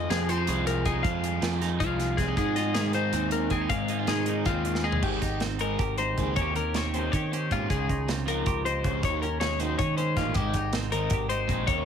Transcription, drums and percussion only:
0.11 snare, closed hi-hat
0.29 closed hi-hat
0.47 closed hi-hat
0.67 closed hi-hat
0.85 kick, closed hi-hat
1.04 kick, closed hi-hat
1.24 closed hi-hat
1.42 snare, closed hi-hat
1.62 snare, closed hi-hat
1.80 kick, closed hi-hat
2.00 snare, closed hi-hat
2.18 kick, snare, closed hi-hat
2.37 kick, closed hi-hat
2.56 snare, closed hi-hat
2.75 snare, closed hi-hat
2.93 closed hi-hat
3.13 closed hi-hat
3.31 closed hi-hat
3.50 kick, closed hi-hat
3.70 kick, closed hi-hat
3.88 closed hi-hat
4.07 snare, closed hi-hat
4.26 closed hi-hat
4.45 kick, closed hi-hat
4.65 closed hi-hat
4.75 snare
4.92 floor tom
5.03 kick, crash
5.22 kick, snare, closed hi-hat
5.40 snare, closed hi-hat
5.59 closed hi-hat
5.79 kick, closed hi-hat
5.98 closed hi-hat
6.18 kick, closed hi-hat
6.36 kick, closed hi-hat
6.56 closed hi-hat
6.74 snare, closed hi-hat
6.94 closed hi-hat
7.13 kick, closed hi-hat
7.33 closed hi-hat
7.51 kick, closed hi-hat
7.70 kick, closed hi-hat
7.89 kick, closed hi-hat
8.09 snare, closed hi-hat
8.28 closed hi-hat
8.46 kick, closed hi-hat
8.66 closed hi-hat
8.84 kick, closed hi-hat
9.03 kick, closed hi-hat
9.23 closed hi-hat
9.41 snare, closed hi-hat
9.60 closed hi-hat
9.79 kick, closed hi-hat
9.98 closed hi-hat
10.17 kick, snare, closed hi-hat
10.34 kick, closed hi-hat
10.54 kick, closed hi-hat
10.73 snare, closed hi-hat
10.92 closed hi-hat
11.10 kick, closed hi-hat
11.30 closed hi-hat
11.49 kick, closed hi-hat
11.67 kick, closed hi-hat

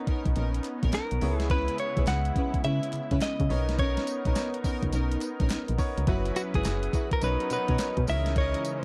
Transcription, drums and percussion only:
0.07 kick, closed hi-hat
0.25 kick, closed hi-hat
0.36 closed hi-hat
0.54 closed hi-hat
0.64 clap, closed hi-hat
0.83 kick, closed hi-hat
0.92 snare, clap, closed hi-hat
1.11 closed hi-hat
1.21 open hi-hat
1.40 snare, closed hi-hat
1.50 kick, closed hi-hat
1.68 closed hi-hat
1.78 closed hi-hat
1.97 kick, closed hi-hat
2.07 snare, clap, closed hi-hat
2.25 closed hi-hat
2.36 kick, closed hi-hat
2.54 kick, closed hi-hat
2.64 closed hi-hat
2.83 closed hi-hat
2.93 clap, closed hi-hat
3.11 kick, closed hi-hat
3.21 snare, clap, closed hi-hat
3.40 kick, closed hi-hat
3.50 open hi-hat
3.69 snare, closed hi-hat
3.79 kick, closed hi-hat
3.97 snare, closed hi-hat
4.07 closed hi-hat, tambourine
4.25 kick, closed hi-hat
4.35 snare, clap, closed hi-hat, tambourine
4.54 closed hi-hat
4.64 kick, open hi-hat, tambourine
4.83 kick, closed hi-hat
4.93 closed hi-hat, tambourine
5.12 closed hi-hat
5.21 clap, closed hi-hat, tambourine
5.40 kick, closed hi-hat
5.50 snare, clap, closed hi-hat, tambourine
5.68 closed hi-hat
5.79 kick, open hi-hat, tambourine
5.98 closed hi-hat
6.07 kick, closed hi-hat
6.26 closed hi-hat
6.36 closed hi-hat, tambourine
6.54 kick, closed hi-hat
6.64 snare, clap, closed hi-hat, tambourine
6.66 clap
6.83 closed hi-hat
6.93 kick, closed hi-hat, tambourine
7.11 kick, closed hi-hat
7.21 closed hi-hat, tambourine
7.40 closed hi-hat
7.50 closed hi-hat, tambourine
7.68 kick, closed hi-hat
7.78 snare, clap, closed hi-hat, tambourine
7.97 kick, closed hi-hat
8.07 open hi-hat, tambourine
8.26 snare, closed hi-hat
8.36 kick, closed hi-hat
8.54 closed hi-hat
8.65 closed hi-hat, tambourine

